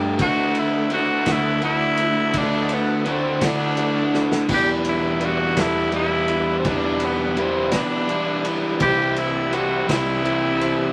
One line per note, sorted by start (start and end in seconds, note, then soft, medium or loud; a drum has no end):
0.00 0.20 G2 loud
0.00 0.17 G3 medium
0.00 0.19 A3 medium
0.00 0.19 D4 medium
0.00 0.21 D4 soft
0.00 0.18 G4 loud
0.00 0.21 G4 medium
0.00 0.20 A4 medium
0.00 4.45 A4 medium
0.00 0.14 D5 medium
0.00 0.14 A5 medium
0.00 0.14 D6 medium
0.18 1.23 D2 loud
0.18 0.91 D3 medium
0.18 0.95 D3 medium
0.18 0.91 A3 medium
0.18 0.92 D4 loud
0.18 0.92 E4 medium
0.18 0.92 F#4 loud
0.18 4.46 E5 medium
0.18 4.46 F#5 medium
0.18 8.77 D6 medium
0.18 kick loud
0.18 ride loud
0.22 0.61 F#4 loud
0.22 0.92 F#4 medium
0.22 0.93 A4 loud
0.55 ride medium
0.60 0.93 E4 medium
0.90 1.28 D3 medium
0.90 1.27 A3 medium
0.90 1.28 A3 medium
0.90 1.27 D4 medium
0.90 1.28 E4 medium
0.90 1.25 F#4 medium
0.90 1.27 F#4 medium
0.90 ride medium
0.94 1.34 F#4 loud
0.94 1.27 A4 medium
1.26 2.30 D2 loud
1.26 1.61 D3 medium
1.26 2.00 D3 medium
1.26 1.61 A3 medium
1.26 2.00 A3 medium
1.26 1.62 D4 medium
1.26 2.01 E4 medium
1.26 1.62 F#4 medium
1.26 1.99 F#4 medium
1.26 1.98 A4 medium
1.26 kick medium
1.26 snare medium
1.26 ride medium
1.32 1.65 E4 loud
1.62 2.32 D3 medium
1.62 2.33 A3 medium
1.62 2.34 D4 loud
1.62 2.39 E4 loud
1.62 2.34 F#4 medium
1.62 ride medium
1.97 2.35 F#4 medium
1.97 2.35 A4 medium
1.97 ride medium
2.02 2.35 E4 medium
2.33 3.38 D2 loud
2.33 3.04 D3 medium
2.33 3.07 D3 medium
2.33 3.05 A3 medium
2.33 3.04 A3 medium
2.33 3.06 D4 medium
2.33 3.06 E4 loud
2.33 3.06 F#4 loud
2.33 kick loud
2.33 ride loud
2.37 2.75 D4 loud
2.37 3.06 F#4 medium
2.37 3.07 A4 medium
2.69 ride medium
2.73 3.12 B3 medium
3.05 3.41 D3 medium
3.05 3.42 A3 medium
3.05 3.40 A3 medium
3.05 3.41 D4 medium
3.05 3.42 E4 medium
3.05 3.39 F#4 medium
3.05 3.42 F#4 medium
3.05 3.41 A4 medium
3.05 ride medium
3.11 3.47 C4 loud
3.40 4.51 D3 medium
3.40 3.75 D3 medium
3.40 4.15 D3 medium
3.40 3.76 A3 medium
3.40 4.14 A3 medium
3.40 3.77 D4 medium
3.40 4.15 E4 medium
3.40 3.76 F#4 medium
3.40 4.13 F#4 medium
3.40 4.12 A4 medium
3.40 kick medium
3.40 snare loud
3.40 ride loud
3.46 4.25 D4 loud
3.76 4.47 D3 medium
3.76 4.47 A3 medium
3.76 4.48 D4 medium
3.76 4.47 F#4 loud
3.76 ride medium
4.13 4.49 E4 medium
4.13 4.50 F#4 medium
4.13 4.49 A4 medium
4.13 snare medium
4.32 snare loud
4.47 5.57 E2 loud
4.47 5.53 E2 loud
4.47 5.56 B2 medium
4.47 5.19 E3 medium
4.47 5.24 E3 medium
4.47 5.19 G3 medium
4.47 5.20 B3 loud
4.47 5.47 D4 medium
4.47 5.20 D4 medium
4.47 5.21 E4 loud
4.47 5.47 E4 medium
4.47 5.22 E4 medium
4.47 5.47 G4 medium
4.47 8.77 B4 medium
4.47 5.47 B4 loud
4.47 5.22 B4 medium
4.47 10.93 D5 medium
4.47 kick loud
4.47 crash loud
4.52 4.70 G4 loud
4.52 10.93 E5 medium
4.85 ride medium
4.89 5.27 E4 medium
5.19 5.57 E3 medium
5.19 5.57 G3 medium
5.19 5.55 B3 loud
5.19 5.57 D4 medium
5.19 5.56 E4 medium
5.19 5.55 E4 medium
5.19 5.55 B4 medium
5.19 ride medium
5.26 5.62 F#4 loud
5.56 6.61 E2 medium
5.56 6.29 E2 medium
5.56 6.29 B2 medium
5.56 5.91 E3 medium
5.56 6.33 E3 medium
5.56 5.91 G3 medium
5.56 6.64 G3 medium
5.56 5.91 B3 medium
5.56 6.54 D4 medium
5.56 6.29 D4 medium
5.56 5.93 E4 medium
5.56 6.29 E4 medium
5.56 6.54 E4 medium
5.56 6.54 G4 medium
5.56 6.55 A4 medium
5.56 6.27 B4 medium
5.56 kick medium
5.56 snare loud
5.56 ride loud
5.61 5.95 E4 loud
5.91 6.63 E3 medium
5.91 6.64 G3 medium
5.91 6.64 B3 medium
5.91 6.64 E4 loud
5.91 ride medium
5.96 6.56 E4 loud
6.28 6.64 D4 soft
6.28 6.64 E4 soft
6.28 6.64 B4 medium
6.28 ride medium
6.59 7.71 E2 medium
6.59 6.70 C4 medium
6.63 7.69 E2 medium
6.63 7.72 B2 medium
6.63 7.40 E3 medium
6.63 7.35 E3 loud
6.63 7.36 G3 loud
6.63 7.36 G3 medium
6.63 7.36 B3 loud
6.63 7.62 D4 medium
6.63 7.36 D4 medium
6.63 7.62 E4 medium
6.63 7.37 E4 loud
6.63 7.38 E4 loud
6.63 7.62 G4 medium
6.63 7.37 B4 medium
6.63 7.62 B4 medium
6.63 kick loud
6.63 ride loud
6.69 7.06 D4 loud
7.00 ride medium
7.05 7.42 B3 medium
7.36 7.72 E3 medium
7.36 7.72 G3 medium
7.36 7.71 B3 medium
7.36 7.72 D4 medium
7.36 7.70 E4 medium
7.36 7.70 B4 medium
7.36 ride medium
7.40 7.77 C4 loud
7.71 8.45 E2 medium
7.71 8.45 B2 medium
7.71 8.08 E3 medium
7.71 8.82 E3 medium
7.71 8.49 E3 medium
7.71 8.09 G3 medium
7.71 8.80 G3 medium
7.71 8.08 B3 loud
7.71 8.70 D4 medium
7.71 8.45 D4 medium
7.71 8.09 E4 medium
7.71 8.46 E4 medium
7.71 8.70 E4 medium
7.71 8.70 G4 medium
7.71 8.43 B4 medium
7.71 8.70 B4 medium
7.71 kick medium
7.71 snare loud
7.71 ride loud
7.75 8.55 D4 loud
8.08 8.80 E3 medium
8.08 8.80 G3 loud
8.08 8.79 B3 loud
8.08 8.81 E4 loud
8.08 ride medium
8.44 8.80 D4 soft
8.44 8.79 E4 medium
8.44 8.80 B4 medium
8.44 ride medium
8.79 9.85 C2 loud
8.79 9.52 C3 medium
8.79 9.89 C3 loud
8.79 9.52 E3 medium
8.79 9.50 E3 loud
8.79 9.52 G3 medium
8.79 9.51 G3 medium
8.79 9.77 C4 medium
8.79 9.52 C4 medium
8.79 9.52 C4 loud
8.79 9.78 E4 medium
8.79 9.53 E4 medium
8.79 9.52 E4 loud
8.79 9.78 G4 medium
8.79 9.20 G4 loud
8.79 10.93 C5 medium
8.79 9.53 C5 medium
8.79 9.78 C5 loud
8.79 10.93 E6 medium
8.79 kick loud
8.79 ride loud
9.16 9.55 E4 medium
9.16 ride medium
9.50 9.87 E3 medium
9.50 9.87 G3 medium
9.50 9.89 G3 medium
9.50 9.86 C4 medium
9.50 9.88 C4 medium
9.50 9.85 E4 medium
9.50 9.89 F#4 loud
9.50 ride medium
9.55 9.88 E4 medium
9.55 9.88 C5 medium
9.87 10.92 C2 loud
9.87 10.61 C3 medium
9.87 10.62 C3 medium
9.87 10.21 E3 medium
9.87 10.61 E3 medium
9.87 10.23 G3 medium
9.87 10.62 G3 medium
9.87 10.23 C4 loud
9.87 10.86 C4 medium
9.87 10.60 C4 medium
9.87 10.23 E4 medium
9.87 10.86 E4 medium
9.87 10.59 E4 medium
9.87 10.93 E4 loud
9.87 10.87 G4 medium
9.87 10.59 C5 medium
9.87 10.87 C5 medium
9.87 kick medium
9.87 snare loud
9.87 ride loud
10.22 10.93 E3 medium
10.22 10.93 G3 medium
10.22 10.93 C4 loud
10.22 10.93 E4 loud
10.22 ride medium
10.60 10.93 G3 medium
10.60 10.93 C4 medium
10.60 10.93 E4 medium
10.60 10.93 C5 medium
10.60 ride medium